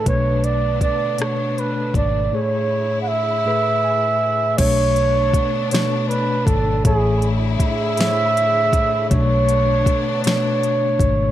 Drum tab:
CC |------|------|x-----|------|
HH |xxxxxx|------|xxxxxx|xxxxxx|
SD |---r--|------|---o--|---o--|
BD |o-o--o|------|o-o--o|o-o--o|

CC |------|
HH |xxxxxx|
SD |---o--|
BD |o-o--o|